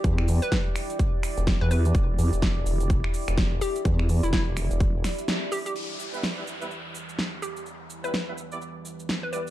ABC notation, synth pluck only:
X:1
M:4/4
L:1/16
Q:"Swing 16ths" 1/4=126
K:Em
V:1 name="Synth pluck"
z3 B2 z8 B B z | z12 z2 G2 | z3 E E z8 z G G | z12 z2 G2 |
z3 B2 z8 B B z |]